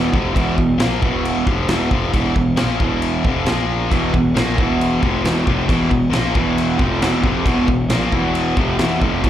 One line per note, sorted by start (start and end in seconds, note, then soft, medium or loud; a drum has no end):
0.00 0.11 E1 loud
0.00 0.11 E2 loud
0.00 0.11 B2 loud
0.00 0.11 E3 loud
0.11 0.34 F1 medium
0.11 0.32 F2 medium
0.11 0.33 C3 loud
0.11 0.33 F3 loud
0.11 kick loud
0.32 0.56 E1 loud
0.32 0.55 E2 loud
0.32 0.55 B2 loud
0.32 0.56 E3 loud
0.32 kick loud
0.37 0.58 E2 medium
0.37 0.58 B2 loud
0.37 0.58 E3 loud
0.37 crash medium
0.56 0.78 E1 medium
0.56 0.74 E2 medium
0.56 0.74 B2 medium
0.56 kick medium
0.78 1.00 A#1 loud
0.78 1.00 A#2 loud
0.78 1.00 F3 medium
0.78 1.01 A#3 loud
0.78 snare loud
0.78 crash medium
1.00 1.43 E1 medium
1.00 1.45 E2 medium
1.00 1.45 B2 loud
1.00 1.45 E3 loud
1.00 kick loud
1.25 crash medium
1.46 1.67 F1 medium
1.46 1.68 F2 medium
1.46 1.68 C3 loud
1.46 1.68 F3 loud
1.46 kick loud
1.69 1.89 E1 loud
1.69 1.90 E2 medium
1.69 1.90 B2 loud
1.69 1.91 E3 loud
1.69 snare loud
1.69 crash medium
1.90 2.11 F1 loud
1.90 2.12 F2 loud
1.90 2.12 C3 medium
1.90 2.13 F3 loud
1.90 kick loud
2.12 2.34 E1 loud
2.12 2.34 E2 medium
2.12 2.34 B2 loud
2.12 2.35 E3 loud
2.12 kick loud
2.12 crash medium
2.35 2.56 E1 medium
2.35 2.53 E2 medium
2.35 2.53 B2 medium
2.35 kick loud
2.57 2.79 A#1 loud
2.57 2.79 A#2 loud
2.57 2.79 F3 loud
2.57 2.79 A#3 loud
2.57 snare loud
2.57 crash medium
2.80 3.21 E1 medium
2.80 3.24 E2 medium
2.80 3.24 B2 loud
2.80 3.24 E3 medium
2.80 kick loud
3.02 crash medium
3.25 3.45 F1 medium
3.25 3.47 F2 medium
3.25 3.46 C3 medium
3.25 3.46 F3 loud
3.25 kick loud
3.46 3.88 A#1 medium
3.46 3.90 A#2 medium
3.46 3.91 F3 medium
3.46 3.91 A#3 medium
3.46 snare loud
3.46 crash medium
3.91 4.12 E1 medium
3.91 4.12 E2 medium
3.91 4.12 B2 medium
3.91 4.13 E3 loud
3.91 kick loud
3.91 crash medium
4.14 4.34 E1 medium
4.14 4.31 E2 medium
4.14 4.31 B2 medium
4.14 kick loud
4.34 4.56 A#1 medium
4.34 4.56 A#2 medium
4.34 4.57 F3 loud
4.34 4.57 A#3 loud
4.34 snare loud
4.34 crash medium
4.56 4.99 E1 loud
4.56 5.00 E2 medium
4.56 5.01 B2 medium
4.56 5.01 E3 medium
4.56 kick loud
4.81 crash medium
5.00 5.23 F1 medium
5.00 5.23 F2 medium
5.00 5.23 C3 loud
5.00 5.24 F3 loud
5.00 kick loud
5.23 5.45 E1 loud
5.23 5.44 E2 medium
5.23 5.45 B2 medium
5.23 5.46 E3 loud
5.23 snare loud
5.23 crash medium
5.45 5.67 F1 medium
5.45 5.67 F2 medium
5.45 5.68 C3 medium
5.45 5.68 F3 loud
5.45 kick loud
5.67 5.89 E1 loud
5.67 5.89 E2 medium
5.67 5.89 B2 medium
5.67 5.90 E3 loud
5.67 kick loud
5.67 crash medium
5.90 6.12 E1 medium
5.90 6.08 E2 medium
5.90 6.08 B2 medium
5.90 kick medium
6.10 6.33 A#1 loud
6.10 6.33 A#2 medium
6.10 6.33 F3 medium
6.10 6.34 A#3 loud
6.10 snare loud
6.10 crash medium
6.14 6.35 A#2 medium
6.14 6.36 F3 loud
6.33 6.77 E1 loud
6.33 6.76 E2 medium
6.33 6.77 B2 loud
6.33 6.77 E3 loud
6.33 kick loud
6.58 crash medium
6.76 7.00 F1 medium
6.76 6.98 F2 medium
6.76 7.00 C3 loud
6.76 7.00 F3 loud
6.76 kick loud
6.99 7.23 E1 loud
6.99 7.21 E2 loud
6.99 7.22 B2 loud
6.99 7.22 E3 loud
6.99 snare loud
6.99 crash medium
7.21 7.44 F1 medium
7.21 7.44 F2 medium
7.21 7.44 C3 loud
7.21 7.45 F3 loud
7.21 kick loud
7.44 7.66 E1 loud
7.44 7.67 E2 loud
7.44 7.67 B2 medium
7.44 7.67 E3 medium
7.44 kick loud
7.44 crash medium
7.68 7.89 E1 medium
7.68 7.86 E2 medium
7.68 7.86 B2 medium
7.68 kick loud
7.89 8.11 A#1 loud
7.89 8.12 A#2 medium
7.89 8.12 F3 medium
7.89 8.13 A#3 loud
7.89 snare loud
7.89 crash medium
8.12 8.54 E1 medium
8.12 8.56 E2 loud
8.12 8.56 B2 loud
8.12 8.57 E3 loud
8.12 kick loud
8.35 crash medium
8.56 8.78 F1 medium
8.56 8.77 F2 loud
8.56 8.78 C3 medium
8.56 8.78 F3 loud
8.56 kick loud
8.78 9.00 E1 medium
8.78 9.00 E2 loud
8.78 9.00 B2 loud
8.78 9.00 E3 loud
8.78 snare loud
8.78 crash medium
9.01 9.22 F1 medium
9.01 9.22 F2 medium
9.01 9.22 C3 loud
9.01 9.23 F3 loud
9.01 kick loud
9.22 9.30 E1 loud
9.22 9.30 E2 medium
9.22 9.30 B2 loud
9.22 9.30 E3 loud
9.22 kick loud
9.22 crash medium